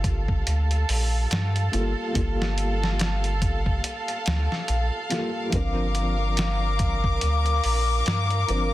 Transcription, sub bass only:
0.00 0.43 G1 loud
0.47 0.85 D2 medium
0.89 1.27 A#1 medium
1.31 1.69 G2 medium
1.74 1.95 G1 medium
2.16 3.81 G1 loud
4.27 4.48 D2 medium
4.69 4.90 A#1 medium
5.53 7.19 G1 loud
7.22 7.60 D2 medium
7.65 8.03 A#1 medium
8.07 8.45 G2 medium
8.49 8.71 G1 medium

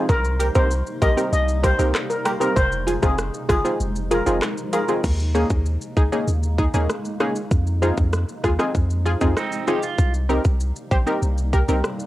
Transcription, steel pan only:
0.09 0.32 A#4 loud
0.55 0.67 C5 medium
1.02 1.13 D#5 medium
1.33 1.44 D#5 medium
1.63 1.75 C5 medium
2.10 2.21 A#4 medium
2.40 2.52 A#4 medium
2.56 2.67 C5 loud
3.03 3.14 G#4 medium
3.49 3.60 G#4 medium
4.11 4.22 A#4 medium
4.73 4.85 A#4 medium

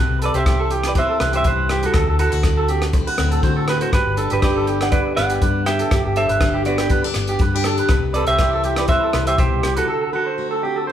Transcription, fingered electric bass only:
0.09 0.29 C2 medium
0.34 1.04 C2 medium
1.21 1.40 C2 medium
1.45 1.85 C2 medium
1.94 2.05 D2 medium
2.07 2.27 D2 medium
2.33 3.02 D2 medium
3.19 3.39 D2 medium
3.43 3.83 D3 medium
3.93 4.03 G1 medium
4.07 4.27 G1 medium
4.32 5.01 G1 medium
5.18 5.37 G1 medium
5.42 5.82 G2 medium
5.92 6.02 G1 medium
6.05 6.25 G1 medium
6.30 6.99 G1 medium
7.16 7.35 G1 medium
7.40 7.80 G2 medium
7.89 8.00 C2 medium
8.02 8.22 C2 medium
8.28 8.97 C2 medium
9.14 9.34 C2 medium
9.39 9.79 C2 medium

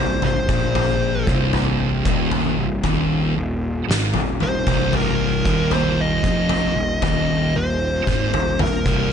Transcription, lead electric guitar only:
0.00 0.24 C5 medium
0.25 1.25 C5 medium
4.43 4.95 C5 medium
4.96 5.74 A#4 medium
5.74 6.00 C5 medium
6.01 7.03 D#5 medium
7.04 7.57 D#5 loud
7.56 8.61 C5 medium
8.61 9.12 A#4 medium

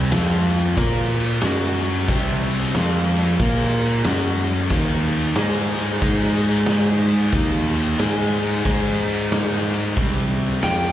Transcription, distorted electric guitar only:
0.00 0.11 C3 medium
0.00 0.11 G3 loud
0.00 0.10 C4 loud
0.11 0.76 F3 medium
0.11 0.77 C4 loud
0.11 0.77 F4 loud
0.78 1.42 A#3 medium
0.78 1.43 F4 medium
0.78 1.43 A#4 loud
1.44 2.08 F#3 medium
1.44 2.08 C#4 medium
1.44 2.09 F#4 loud
2.08 2.73 C3 medium
2.08 2.73 G3 medium
2.08 2.74 C4 medium
2.74 3.39 F3 medium
2.74 3.39 C4 medium
2.74 3.40 F4 loud
3.41 4.05 A#3 loud
3.41 4.05 F4 loud
3.41 4.06 A#4 medium
4.06 4.70 F#3 medium
4.06 4.71 C#4 loud
4.06 4.71 F#4 loud
4.71 5.35 D#3 medium
4.71 5.36 A#3 loud
4.71 5.36 D#4 medium
5.36 6.00 G#3 medium
5.36 6.01 D#4 loud
5.36 6.01 G#4 loud
6.01 7.32 G#3 loud
6.01 7.33 D#4 loud
6.01 7.33 G#4 loud
7.34 7.98 D#3 medium
7.34 7.98 A#3 loud
7.34 7.98 D#4 loud
7.99 8.63 G#3 medium
7.99 8.64 D#4 medium
7.99 8.64 G#4 loud
8.65 9.96 G#3 medium
8.65 9.96 D#4 loud
8.65 9.96 G#4 loud
9.96 10.61 C3 medium
9.96 10.62 G3 medium
9.96 10.61 C4 medium
10.62 10.92 F3 medium
10.62 10.92 C4 medium
10.62 10.92 F4 loud

